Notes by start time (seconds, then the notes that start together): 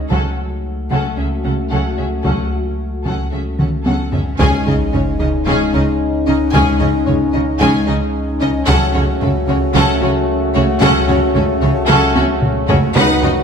0.10 C#2 C#3 F#3 A3 C#4 F#4 A4 F#5, taiko
0.91 C#2 C#3 F#3 C#4 A4 F#5, taiko
1.17 C#2 C#3 C#4 G#4 E5
1.44 C#2 C#3 C#4 A4 F#5
1.71 C#2 C#3 F#3 C#4 A4 F#5
1.98 C#2 C#3 C#4 G#4 E5
2.24 C#2 C#3 F#3 C#4 A4 F#5, taiko
3.05 C#2 C#3 F#3 C#4 A4 F#5, taiko
3.32 C#2 C#3 C#4 G#4 E5
3.59 C#2 C#3 C#4 A4 F#5, taiko mid
3.86 C#2 C#3 F#3 C#4 A4 F#5, taiko high
4.12 C#2 C#3 C#4 G#4 E5, taiko low
4.39 C#2 C#3 G#3 C#4 D#4 G#4 G#5, taiko, sub drop
4.66 C#2 C#3 C#4 D#4 G#4 D#5, taiko low
4.93 C#2 C#3 C#4 C#5, taiko low
5.20 C#2 C#3 C#4 D#4 D#5
5.46 C#2 C#3 G#3 C#4 G#4 G#5, taiko
5.73 C#2 C#3 C#4 D#4 G#4 D#5
6.26 C#2 C#3 C#4 D#4 D#5
6.53 C#2 C#3 G#3 C#4 G#4 G#5, taiko
6.79 C#2 C#3 C#4 D#4 G#4 D#5, taiko low
7.06 C#2 C#3 C#4 C#5, taiko low
7.33 C#2 C#3 C#4 D#4 D#5
7.60 C#2 C#3 G#3 C#4 G#4 G#5, taiko
7.87 C#2 C#3 C#4 D#4 G#4 D#5
8.40 C#2 C#3 C#4 D#4 D#5
8.67 C#2 C#3 F#3 A3 C#4 F#4 A4 F#5, taiko
8.94 C#2 C#3 C#4 F#4 C#5, taiko low
9.21 C#2 C#3 A3 C#4 A4, taiko low
9.48 C#2 C#3 C#4 F#4 C#5
9.74 C#2 C#3 F#3 C#4 A4 F#5, taiko
10.01 C#2 C#3 C#4 F#4 C#5
10.55 C#2 C#3 A3 C#4 F#4 C#5
10.82 C#2 C#3 F#3 C#4 A4 F#5, taiko
11.08 C#2 C#3 C#4 F#4 C#5, taiko low
11.34 C#2 C#3 A3 C#4 A4, taiko low
11.61 C#2 C#3 C#4 F#4 C#5
11.88 C#2 C#3 F#3 C#4 A4 F#5, taiko
12.15 C#2 C#3 C#4 F#4 C#5, taiko high
12.42 taiko low-mid
12.68 C#2 C#3 A3 C#4 F#4 C#5, taiko low
12.95 C#2 C#3 D#3 F#3 B3 D#4 F#4 B4 F#5, taiko
13.22 C#2 C#3 D#4 F#4 B4 D#5, taiko low